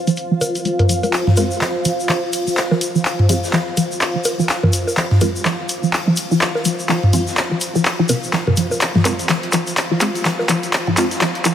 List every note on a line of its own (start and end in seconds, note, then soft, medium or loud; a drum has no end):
0.00 11.55 F4 medium
0.00 11.55 C5 medium
0.00 11.55 F5 medium
0.07 0.12 F3 loud
0.07 closed hi-hat soft
0.07 shaker medium
0.16 closed hi-hat medium
0.16 shaker soft
0.31 0.34 F3 loud
0.41 0.46 D#3 medium
0.41 closed hi-hat medium
0.41 low bongo medium
0.41 shaker medium
0.55 closed hi-hat soft
0.55 shaker soft
0.65 0.68 G#3 medium
0.65 closed hi-hat medium
0.65 shaker soft
0.79 closed hi-hat soft
0.79 mid tom medium
0.79 low bongo medium
0.89 0.94 F3 medium
0.89 closed hi-hat medium
0.89 shaker medium
1.03 1.06 G#3 medium
1.03 closed hi-hat soft
1.03 low bongo soft
1.03 shaker soft
1.12 clap soft
1.12 closed hi-hat medium
1.12 shaker soft
1.27 1.30 F3 loud
1.27 snare soft
1.27 mid tom medium
1.37 1.45 G#3 medium
1.37 1.45 C4 medium
1.37 1.45 F4 loud
1.37 closed hi-hat medium
1.37 low bongo medium
1.37 shaker medium
1.51 shaker soft
1.61 1.68 F3 medium
1.61 snare loud
1.61 clap soft
1.61 closed hi-hat medium
1.61 shaker soft
1.85 1.92 F3 loud
1.85 closed hi-hat medium
1.85 shaker medium
2.00 shaker soft
2.09 2.14 F3 loud
2.09 clap medium
2.09 closed hi-hat medium
2.09 shaker soft
2.33 closed hi-hat medium
2.33 shaker medium
2.47 2.52 F3 medium
2.47 closed hi-hat soft
2.47 shaker medium
2.56 snare loud
2.56 clap soft
2.56 closed hi-hat medium
2.56 shaker soft
2.71 2.76 F3 loud
2.71 snare soft
2.71 low bongo medium
2.81 closed hi-hat medium
2.81 shaker medium
2.95 2.98 F3 loud
2.95 shaker medium
3.04 clap medium
3.04 closed hi-hat medium
3.04 shaker soft
3.19 mid tom medium
3.29 3.36 F3 medium
3.29 3.37 G#3 medium
3.29 3.37 C4 medium
3.29 3.37 F4 loud
3.29 closed hi-hat medium
3.29 shaker medium
3.44 snare medium
3.44 shaker medium
3.53 3.60 F3 loud
3.53 snare loud
3.53 clap medium
3.53 closed hi-hat medium
3.53 shaker soft
3.77 3.82 F3 loud
3.77 closed hi-hat medium
3.77 shaker medium
3.92 shaker soft
4.01 clap medium
4.01 closed hi-hat medium
4.01 shaker soft
4.15 4.20 F3 medium
4.24 closed hi-hat medium
4.24 low bongo medium
4.24 shaker loud
4.39 4.44 F3 loud
4.39 shaker medium
4.48 snare loud
4.48 clap medium
4.48 closed hi-hat medium
4.48 shaker soft
4.63 4.66 F3 loud
4.63 mid tom medium
4.63 low bongo medium
4.73 closed hi-hat medium
4.73 shaker medium
4.87 closed hi-hat soft
4.87 low bongo medium
4.87 shaker medium
4.97 5.04 F3 medium
4.97 clap medium
4.97 closed hi-hat medium
4.97 shaker soft
5.11 snare soft
5.11 mid tom medium
5.21 5.28 F3 loud
5.21 5.29 G#3 medium
5.21 5.29 C4 medium
5.21 5.29 F4 loud
5.21 closed hi-hat medium
5.21 low bongo medium
5.21 shaker medium
5.36 shaker medium
5.45 5.50 F3 loud
5.45 snare loud
5.45 clap medium
5.45 closed hi-hat medium
5.45 shaker soft
5.69 closed hi-hat medium
5.69 shaker medium
5.83 5.88 F3 medium
5.83 shaker medium
5.93 clap medium
5.93 closed hi-hat medium
5.93 shaker soft
6.07 6.12 F3 loud
6.16 closed hi-hat medium
6.16 closed hi-hat loud
6.16 shaker loud
6.31 6.34 F3 loud
6.31 closed hi-hat soft
6.31 shaker medium
6.41 snare loud
6.41 clap medium
6.41 closed hi-hat medium
6.41 shaker soft
6.55 snare soft
6.55 low bongo medium
6.65 6.72 F3 medium
6.65 closed hi-hat loud
6.65 closed hi-hat medium
6.65 shaker loud
6.79 shaker medium
6.89 6.96 F3 loud
6.89 clap medium
6.89 closed hi-hat medium
6.89 shaker soft
7.03 mid tom medium
7.13 7.18 F3 loud
7.13 7.21 G#3 medium
7.13 7.21 C4 medium
7.13 7.21 F4 loud
7.13 closed hi-hat medium
7.13 shaker medium
7.27 snare medium
7.27 shaker medium
7.37 snare loud
7.37 clap medium
7.37 closed hi-hat medium
7.37 shaker soft
7.51 7.56 F3 medium
7.61 closed hi-hat medium
7.61 closed hi-hat loud
7.61 shaker medium
7.75 7.80 F3 loud
7.75 shaker soft
7.85 clap medium
7.85 closed hi-hat medium
7.85 shaker soft
7.99 8.02 F3 loud
8.09 8.16 C3 medium
8.09 closed hi-hat medium
8.09 low bongo medium
8.09 shaker loud
8.23 shaker medium
8.33 8.38 F3 medium
8.33 snare loud
8.33 clap medium
8.33 closed hi-hat medium
8.33 shaker soft
8.47 8.49 C3 loud
8.47 mid tom medium
8.47 low bongo medium
8.56 8.60 F3 medium
8.56 closed hi-hat medium
8.56 shaker medium
8.71 closed hi-hat soft
8.71 low bongo medium
8.71 shaker medium
8.81 clap medium
8.81 closed hi-hat medium
8.81 shaker soft
8.95 8.98 F3 medium
8.95 snare soft
8.95 mid tom medium
9.05 9.13 G#3 medium
9.05 9.13 C4 medium
9.05 9.13 F4 medium
9.05 clap medium
9.05 closed hi-hat medium
9.05 low bongo medium
9.05 shaker medium
9.19 closed hi-hat soft
9.19 shaker medium
9.28 9.34 F3 medium
9.28 snare loud
9.28 clap medium
9.28 closed hi-hat medium
9.28 shaker soft
9.43 closed hi-hat soft
9.52 9.60 F3 medium
9.52 clap medium
9.52 closed hi-hat medium
9.52 shaker medium
9.67 closed hi-hat soft
9.67 shaker soft
9.77 clap medium
9.77 closed hi-hat medium
9.77 closed hi-hat soft
9.77 shaker soft
9.91 9.94 F3 medium
10.00 10.09 G#3 medium
10.00 10.09 C4 medium
10.00 10.09 F4 medium
10.00 clap medium
10.00 closed hi-hat medium
10.00 shaker medium
10.15 closed hi-hat soft
10.15 shaker medium
10.25 10.30 F3 medium
10.25 snare loud
10.25 clap medium
10.25 closed hi-hat soft
10.25 closed hi-hat medium
10.25 shaker soft
10.39 snare soft
10.39 low bongo medium
10.49 10.56 F3 medium
10.49 clap medium
10.49 closed hi-hat medium
10.49 shaker medium
10.63 closed hi-hat soft
10.63 shaker medium
10.73 clap medium
10.73 closed hi-hat medium
10.73 shaker soft
10.87 10.90 F3 loud
10.87 mid tom medium
10.97 11.05 G#3 medium
10.97 11.05 C4 medium
10.97 11.05 F4 medium
10.97 clap medium
10.97 closed hi-hat medium
10.97 shaker medium
11.11 snare soft
11.11 closed hi-hat soft
11.11 shaker medium
11.21 11.26 F3 medium
11.21 snare loud
11.21 clap medium
11.21 closed hi-hat medium
11.21 shaker soft
11.35 closed hi-hat soft
11.45 11.52 F3 medium
11.45 clap medium
11.45 closed hi-hat medium
11.45 shaker loud